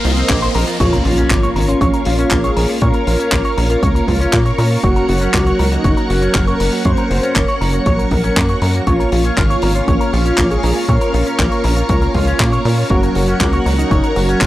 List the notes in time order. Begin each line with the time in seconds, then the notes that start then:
Already playing: A#4 C5 F5 C6, riser, swell
0.04 C2 F3 A#3 C4 F4 D#5, open hi-hat
0.17 C4, closed hi-hat
0.29 A#1 A#3, kick, clap, closed hi-hat
0.42 C5, closed hi-hat
0.55 A#1 A#4, open hi-hat
0.67 F4, closed hi-hat
0.80 A#1 A#3 C#4 F4 A#4 C#5 F5 C#6, kick, closed hi-hat, crash, impact
0.93 A#4, closed hi-hat
1.05 A#1 F4, open hi-hat
1.17 C#4, closed hi-hat
1.30 G#1 A#3 F4, kick, clap, closed hi-hat
1.43 C#5, closed hi-hat
1.56 G#1 A#4, open hi-hat
1.68 C#4 F4, closed hi-hat
1.81 A#1 C#5, kick, closed hi-hat
1.94 A#4, closed hi-hat
2.05 A#1 F4, open hi-hat
2.19 C#4, closed hi-hat
2.31 A#1 A#3, kick, clap, closed hi-hat
2.44 G#4 C#5, closed hi-hat
2.57 A#1 A#3 C#4 F4 A#4 C#5, open hi-hat
2.69 F4
2.81 A#2 A#3 C#4 F4 A#4 C#5, kick, closed hi-hat
2.94 A#4, closed hi-hat
3.07 A#1 F4 A#4, open hi-hat
3.20 C#4, closed hi-hat
3.32 A#1 A#3 A#4, kick, clap, closed hi-hat
3.45 C#5, closed hi-hat
3.57 A#1 A#4, open hi-hat
3.70 F4 A#4, closed hi-hat
3.83 C#2 C#5, kick, closed hi-hat
3.95 A#4, closed hi-hat
4.08 C#2 F4, kick, open hi-hat
4.20 C#4, closed hi-hat
4.33 A#2 A#3, kick, clap, closed hi-hat
4.46 C#5, closed hi-hat
4.58 A#2 A#3 C#4 F4 A#4 C#5, open hi-hat
4.71 F4
4.84 F#1 F#3 A#3 C#4 F#4 A#4 C#5 F#5, kick, closed hi-hat
4.96 A#4, closed hi-hat
5.09 F#1 F#4, open hi-hat
5.21 C#4, closed hi-hat
5.34 C#2 A#3 F#4, kick, clap, closed hi-hat
5.46 C#5, closed hi-hat
5.59 C#2 A#4, open hi-hat
5.72 D#4 F#4, closed hi-hat
5.84 F#1 C#5, kick, closed hi-hat
5.97 A#4, closed hi-hat
6.10 F#1 F#4, open hi-hat
6.22 C#4, closed hi-hat
6.35 F#1 A#3, kick, clap, closed hi-hat
6.47 A#4 C#5, closed hi-hat
6.60 F#1 A#3 A#4, open hi-hat
6.73 F#4
6.85 F#2 F#3 A#3 C#4 A#4 C5 C#5, kick, closed hi-hat
6.97 A#4, closed hi-hat
7.10 F#1 F#4 C5, open hi-hat
7.23 C#4, closed hi-hat
7.36 F#1 A#3 C#5, kick, clap, closed hi-hat
7.48 C#5, closed hi-hat
7.61 F#1 A#4, open hi-hat
7.73 F#4 C#5, closed hi-hat
7.86 A#1 C#5, kick, closed hi-hat
7.99 A#4, closed hi-hat
8.11 A#1 F#4 A#4, kick, open hi-hat
8.24 C#4, closed hi-hat
8.37 F#2 A#3, kick, clap, closed hi-hat
8.49 C#5, closed hi-hat
8.62 F#2 F#3 A#3 C#4 A#4, open hi-hat
8.74 F#4, closed hi-hat
8.87 A#1 A#3 C#4 F4 A#4 C#5 F5, kick, closed hi-hat
9.00 A#4, closed hi-hat
9.12 A#1 F4, open hi-hat
9.25 C#4, closed hi-hat
9.37 G#1 A#3 F4, kick, clap, closed hi-hat
9.50 C#5, closed hi-hat
9.62 G#1 A#4, open hi-hat
9.75 C#4 F4, closed hi-hat
9.88 A#1 C#5, kick, closed hi-hat
10.01 A#4, closed hi-hat
10.13 A#1 F4, open hi-hat
10.26 C#4, closed hi-hat
10.38 A#1 A#3, kick, clap, closed hi-hat
10.51 G#4 C#5, closed hi-hat
10.63 A#1 A#3 C#4 F4 A#4 C#5, open hi-hat
10.76 F4
10.89 A#2 A#3 C#4 F4 A#4 C#5, kick, closed hi-hat
11.01 A#4, closed hi-hat
11.14 A#1 F4 A#4, open hi-hat
11.26 C#4, closed hi-hat
11.39 A#1 A#3 A#4, kick, clap, closed hi-hat
11.52 C#5, closed hi-hat
11.64 A#1 A#4, open hi-hat
11.77 F4 A#4, closed hi-hat
11.89 C#2 C#5, kick, closed hi-hat
12.02 A#4, closed hi-hat
12.14 C#2 F4, kick, open hi-hat
12.27 C#4, closed hi-hat
12.39 A#2 A#3, kick, clap, closed hi-hat
12.52 C#5, closed hi-hat
12.65 A#2 A#3 C#4 F4 A#4 C#5, open hi-hat
12.78 F4
12.90 F#1 F#3 A#3 C#4 F#4 A#4 C#5 F#5 C#6, kick, closed hi-hat
13.03 A#4, closed hi-hat
13.15 F#1 F#4, open hi-hat
13.28 C#4, closed hi-hat
13.40 C#2 A#3 F#4, kick, clap, closed hi-hat
13.53 C#5, closed hi-hat
13.66 C#2 A#4, open hi-hat
13.78 D#4 F#4, closed hi-hat
13.91 F#1 C#5, kick, closed hi-hat
14.04 A#4, closed hi-hat
14.16 F#1 F#4, open hi-hat
14.29 C#4, closed hi-hat
14.41 F#1 A#3, kick, clap, closed hi-hat